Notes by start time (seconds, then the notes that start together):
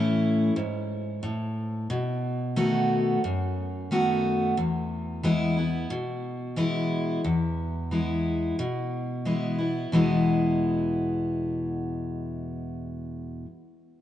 Already playing: A2 E3 A3 C#4 E4
0.56 G#2
1.23 A2
1.90 B2
2.56 D#3 A3 B3 F#4
3.24 F#2
3.91 D#3 A3 B3 F#4
4.57 E2
5.23 E3 G#3 B3 E4
5.57 B3 E4
5.90 B2
6.56 E3 G#3 B3 E4
7.24 E2
7.91 E3 G#3 B3 E4
8.59 B2
9.25 E3 G#3 B3 E4
9.59 B3 E4
9.92 E2 B2 E3 G#3 B3 E4